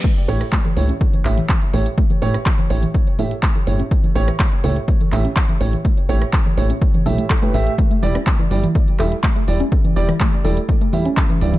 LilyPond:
<<
  \new Staff \with { instrumentName = "Grand piano" } { \time 4/4 \key a \mixolydian \tempo 4 = 124 r8 <a, a g' cis''>16 r8. <a, a g' cis''>16 r8. <a, a g' e''>16 r8. <a, a g' cis''>16 r16 | r8 <a, a g' cis''>16 r8. <a, a g' cis''>16 r8. <a, a g' e''>16 r8. <a, a g' cis''>16 r16 | r8 <a, a g' cis''>16 r8. <a, a g' cis''>16 r8. <a, a g' e''>16 r8. <a, a g' cis''>16 r16 | r8 <a, a g' cis''>16 r8. <a, a g' cis''>16 r8. <a, a g' e''>16 r8 <a, a g' b'>16 <a g' e''>16 r16 |
r8 <g e' d''>16 r8. <g e' d''>16 r8. <g e' e''>16 r8. <g e' d''>16 r16 | r8 <g e' d''>16 r8. <g e' d''>16 r8. <g e' e''>16 r8. <g, g e' d''>16 r16 | }
  \new Staff \with { instrumentName = "Synth pluck" } { \time 4/4 \key a \mixolydian a16 r16 a'16 r16 a16 e16 r16 cis'16 r16 e16 r16 e16 a16 r16 a'16 r16 | a16 e16 r16 cis'16 r16 e16 r16 e16 a16 r16 a'16 r16 a16 e16 r16 cis'16 | r16 e16 r16 e16 a16 r16 a'16 r16 a16 e16 r16 cis'16 r16 e16 r16 e16 | a16 r16 a'16 r16 a16 e16 r16 cis'16 r16 e16 a'16 a16 a'16 a16 a,16 r16 |
a16 a16 r16 cis'16 r16 e16 r16 e16 a16 r16 a'16 r16 a16 a16 r16 cis'16 | r16 e16 r16 e16 a16 r16 a'16 r16 a16 a16 r16 cis'16 r16 e16 r16 e16 | }
  \new Staff \with { instrumentName = "Analog synth bass" } { \clef bass \time 4/4 \key a \mixolydian r8 a,,8 r8 cis,8 r8 a,,8 r8 a,,8 | r8 a,,8 r8 a,,8 r8 a,8 r8 g,,8 | r8 a,,8 r8 cis,8 r8 a,,8 r8 a,,8 | r8 a,,8 r8 a,,8 r8 b,,8 r8 a,,8 |
r8 e,,8 r8 g,,8 r8 e,,8 r8 e,,8 | r8 e,,8 r8 e,,8 r8 e,8 r8 d,,8 | }
  \new DrumStaff \with { instrumentName = "Drums" } \drummode { \time 4/4 <cymc hh bd>16 hh16 hho16 <hh ss>16 <hc hh bd>16 hh16 hho16 hh16 <hh bd>16 hh16 <hc hho>16 hh16 <hc hh bd>16 hh16 hho16 hh16 | <hh bd>16 hh16 hho16 <hh ss>16 <hc hh bd>16 hh16 hho16 hh16 <hh bd>16 hh16 hho16 hh16 <hc hh bd>16 hh16 hho16 hh16 | <hh bd>16 hh16 hho16 <hh ss>16 <hc hh bd>16 hh16 hho16 hh16 <hh bd>16 hh16 <hc hho>16 hh16 <hc hh bd>16 hh16 hho16 hh16 | <hh bd>16 hh16 hho16 <hh ss>16 <hc hh bd>16 hh16 hho16 hh16 <hh bd>16 hh16 hho16 hh16 <hc hh bd>16 hh16 hho16 hh16 |
<hh bd>16 hh16 hho16 <hh ss>16 <hc hh bd>16 hh16 hho16 hh16 <hh bd>16 hh16 <hc hho>16 hh16 <hc hh bd>16 hh16 hho16 hh16 | <hh bd>16 hh16 hho16 <hh ss>16 <hc hh bd>16 hh16 hho16 hh16 <hh bd>16 hh16 hho16 hh16 <hc hh bd>16 hh16 hho16 hh16 | }
>>